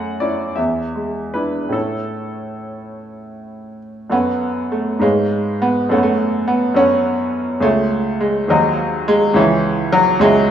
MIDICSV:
0, 0, Header, 1, 2, 480
1, 0, Start_track
1, 0, Key_signature, 3, "major"
1, 0, Tempo, 719424
1, 631, Tempo, 804290
1, 1103, Time_signature, 6, 3, 24, 8
1, 2071, Tempo, 765306
1, 2550, Key_signature, 3, "minor"
1, 2551, Tempo, 598802
1, 3991, Tempo, 575264
1, 7819, End_track
2, 0, Start_track
2, 0, Title_t, "Grand piano"
2, 0, Program_c, 0, 0
2, 0, Control_c, 0, 64, 127
2, 0, Note_on_c, 0, 42, 56
2, 0, Note_on_c, 0, 57, 42
2, 0, Note_on_c, 0, 78, 80
2, 135, Note_on_c, 0, 74, 70
2, 142, Note_off_c, 0, 78, 0
2, 142, Note_on_c, 0, 61, 43
2, 143, Note_on_c, 0, 64, 44
2, 287, Note_off_c, 0, 57, 0
2, 357, Note_off_c, 0, 61, 0
2, 357, Note_off_c, 0, 64, 0
2, 362, Note_off_c, 0, 42, 0
2, 371, Note_on_c, 0, 76, 57
2, 377, Note_off_c, 0, 74, 0
2, 377, Note_on_c, 0, 40, 48
2, 394, Control_c, 0, 64, 0
2, 534, Control_c, 0, 64, 127
2, 637, Note_on_c, 0, 56, 39
2, 858, Note_off_c, 0, 76, 0
2, 864, Note_on_c, 0, 71, 58
2, 872, Note_on_c, 0, 62, 35
2, 872, Note_on_c, 0, 64, 36
2, 1009, Note_off_c, 0, 56, 0
2, 1076, Note_on_c, 0, 45, 44
2, 1079, Note_off_c, 0, 40, 0
2, 1082, Note_on_c, 0, 57, 36
2, 1084, Note_off_c, 0, 62, 0
2, 1084, Note_off_c, 0, 64, 0
2, 1088, Note_on_c, 0, 61, 36
2, 1096, Note_on_c, 0, 69, 62
2, 1098, Note_on_c, 0, 64, 33
2, 1103, Note_off_c, 0, 71, 0
2, 1115, Control_c, 0, 64, 0
2, 1230, Control_c, 0, 64, 127
2, 2326, Note_off_c, 0, 69, 0
2, 2511, Note_off_c, 0, 45, 0
2, 2514, Note_off_c, 0, 57, 0
2, 2518, Note_off_c, 0, 61, 0
2, 2523, Note_off_c, 0, 64, 0
2, 2533, Note_on_c, 0, 42, 52
2, 2540, Note_on_c, 0, 69, 46
2, 2542, Note_on_c, 0, 73, 45
2, 2548, Note_on_c, 0, 59, 85
2, 2549, Note_on_c, 0, 78, 43
2, 2563, Control_c, 0, 64, 0
2, 2679, Control_c, 0, 64, 127
2, 3027, Note_on_c, 0, 57, 65
2, 3032, Note_off_c, 0, 59, 0
2, 3244, Note_off_c, 0, 42, 0
2, 3248, Note_off_c, 0, 69, 0
2, 3248, Note_on_c, 0, 44, 51
2, 3250, Note_off_c, 0, 73, 0
2, 3255, Note_off_c, 0, 78, 0
2, 3256, Note_on_c, 0, 71, 44
2, 3265, Note_on_c, 0, 56, 80
2, 3265, Note_on_c, 0, 73, 45
2, 3270, Note_on_c, 0, 77, 41
2, 3274, Note_off_c, 0, 57, 0
2, 3291, Control_c, 0, 64, 0
2, 3431, Control_c, 0, 64, 127
2, 3748, Note_on_c, 0, 59, 83
2, 3750, Note_off_c, 0, 56, 0
2, 3953, Note_off_c, 0, 44, 0
2, 3958, Note_off_c, 0, 71, 0
2, 3962, Note_off_c, 0, 73, 0
2, 3965, Note_off_c, 0, 77, 0
2, 3968, Note_on_c, 0, 42, 58
2, 3974, Note_on_c, 0, 69, 43
2, 3984, Note_on_c, 0, 73, 48
2, 3986, Note_off_c, 0, 59, 0
2, 3987, Note_on_c, 0, 57, 82
2, 3987, Note_on_c, 0, 78, 46
2, 4004, Control_c, 0, 64, 0
2, 4040, Note_off_c, 0, 57, 0
2, 4043, Note_on_c, 0, 59, 69
2, 4083, Note_on_c, 0, 57, 80
2, 4093, Note_off_c, 0, 59, 0
2, 4148, Control_c, 0, 64, 127
2, 4454, Note_on_c, 0, 59, 80
2, 4465, Note_off_c, 0, 57, 0
2, 4664, Note_off_c, 0, 42, 0
2, 4670, Note_off_c, 0, 69, 0
2, 4677, Note_off_c, 0, 73, 0
2, 4677, Note_on_c, 0, 42, 62
2, 4682, Note_on_c, 0, 69, 48
2, 4684, Note_off_c, 0, 78, 0
2, 4690, Note_on_c, 0, 73, 43
2, 4695, Note_on_c, 0, 61, 90
2, 4699, Note_off_c, 0, 59, 0
2, 4699, Note_on_c, 0, 78, 51
2, 5390, Note_off_c, 0, 42, 0
2, 5392, Note_off_c, 0, 69, 0
2, 5393, Note_on_c, 0, 37, 61
2, 5395, Note_off_c, 0, 73, 0
2, 5401, Note_off_c, 0, 78, 0
2, 5402, Note_on_c, 0, 68, 52
2, 5408, Note_on_c, 0, 73, 50
2, 5412, Note_on_c, 0, 57, 92
2, 5416, Note_on_c, 0, 76, 45
2, 5421, Note_off_c, 0, 61, 0
2, 5439, Control_c, 0, 64, 0
2, 5562, Control_c, 0, 64, 127
2, 5897, Note_on_c, 0, 56, 75
2, 5900, Note_off_c, 0, 57, 0
2, 6109, Note_off_c, 0, 37, 0
2, 6114, Note_off_c, 0, 68, 0
2, 6117, Note_off_c, 0, 73, 0
2, 6121, Note_off_c, 0, 76, 0
2, 6127, Note_on_c, 0, 39, 56
2, 6135, Note_on_c, 0, 68, 54
2, 6142, Note_on_c, 0, 72, 52
2, 6144, Note_off_c, 0, 56, 0
2, 6146, Note_on_c, 0, 54, 88
2, 6147, Note_on_c, 0, 75, 54
2, 6163, Control_c, 0, 64, 0
2, 6299, Control_c, 0, 64, 127
2, 6627, Note_on_c, 0, 56, 98
2, 6634, Note_off_c, 0, 54, 0
2, 6837, Note_off_c, 0, 68, 0
2, 6842, Note_on_c, 0, 37, 70
2, 6843, Note_off_c, 0, 39, 0
2, 6849, Note_on_c, 0, 68, 53
2, 6851, Note_off_c, 0, 72, 0
2, 6853, Note_off_c, 0, 75, 0
2, 6856, Note_on_c, 0, 73, 61
2, 6860, Note_on_c, 0, 52, 87
2, 6862, Note_on_c, 0, 76, 59
2, 6872, Note_off_c, 0, 56, 0
2, 6890, Control_c, 0, 64, 0
2, 7001, Control_c, 0, 64, 127
2, 7332, Note_on_c, 0, 54, 107
2, 7339, Note_off_c, 0, 52, 0
2, 7542, Note_off_c, 0, 37, 0
2, 7546, Note_off_c, 0, 68, 0
2, 7550, Note_off_c, 0, 73, 0
2, 7553, Note_off_c, 0, 76, 0
2, 7555, Note_on_c, 0, 37, 68
2, 7560, Note_on_c, 0, 68, 59
2, 7568, Note_on_c, 0, 73, 59
2, 7570, Note_on_c, 0, 56, 104
2, 7574, Note_off_c, 0, 54, 0
2, 7576, Note_on_c, 0, 76, 58
2, 7819, Note_off_c, 0, 37, 0
2, 7819, Note_off_c, 0, 56, 0
2, 7819, Note_off_c, 0, 68, 0
2, 7819, Note_off_c, 0, 73, 0
2, 7819, Note_off_c, 0, 76, 0
2, 7819, End_track
0, 0, End_of_file